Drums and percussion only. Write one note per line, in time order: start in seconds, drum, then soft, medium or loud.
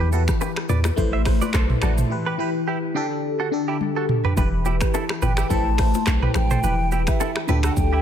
0.12 low bongo medium
0.12 shaker medium
0.28 finger snap medium
0.28 kick medium
0.28 cross-stick medium
0.28 shaker medium
0.41 high bongo medium
0.41 shaker medium
0.56 finger snap medium
0.56 cross-stick loud
0.69 mid tom medium
0.69 high bongo medium
0.69 low bongo medium
0.69 shaker medium
0.84 finger snap medium
0.84 cross-stick loud
0.84 low bongo medium
0.84 shaker medium
0.98 kick medium
0.98 low conga medium
0.98 shaker medium
1.25 finger snap medium
1.25 kick loud
1.25 cross-stick medium
1.25 open hi-hat soft
1.25 shaker soft
1.42 low bongo medium
1.42 shaker medium
1.53 finger snap medium
1.53 kick medium
1.53 cross-stick medium
1.53 clap medium
1.53 high bongo medium
1.53 shaker medium
1.70 mid tom medium
1.82 finger snap medium
1.82 cross-stick loud
1.82 low conga medium
1.82 shaker soft
1.98 mid tom medium
1.98 shaker medium
3.81 high tom medium
4.09 mid tom medium
4.25 floor tom medium
4.37 kick loud
4.37 low conga medium
4.37 shaker medium
4.65 low bongo medium
4.65 shaker medium
4.81 finger snap medium
4.81 kick medium
4.81 cross-stick medium
4.81 shaker medium
4.94 high bongo medium
4.94 shaker medium
5.09 finger snap medium
5.09 cross-stick loud
5.22 mid tom medium
5.22 low bongo medium
5.22 shaker medium
5.37 finger snap medium
5.37 cross-stick loud
5.37 shaker medium
5.50 kick medium
5.50 low conga medium
5.50 shaker medium
5.78 finger snap medium
5.78 kick loud
5.78 cross-stick medium
5.78 open hi-hat soft
5.78 shaker soft
5.94 low bongo medium
5.94 shaker medium
6.06 finger snap medium
6.06 kick medium
6.06 cross-stick loud
6.06 clap loud
6.06 high bongo medium
6.06 shaker medium
6.23 mid tom medium
6.34 finger snap medium
6.34 cross-stick medium
6.34 high bongo medium
6.34 low conga medium
6.34 shaker soft
6.51 mid tom medium
6.51 shaker medium
6.64 low conga medium
6.64 shaker medium
6.92 low bongo medium
6.92 shaker medium
7.07 finger snap medium
7.07 kick medium
7.07 cross-stick medium
7.07 shaker medium
7.20 high bongo medium
7.20 shaker medium
7.36 finger snap medium
7.36 cross-stick loud
7.48 mid tom medium
7.48 low bongo medium
7.48 shaker medium
7.63 finger snap medium
7.63 cross-stick loud
7.63 shaker medium
7.77 kick medium
7.77 low conga medium
7.77 shaker medium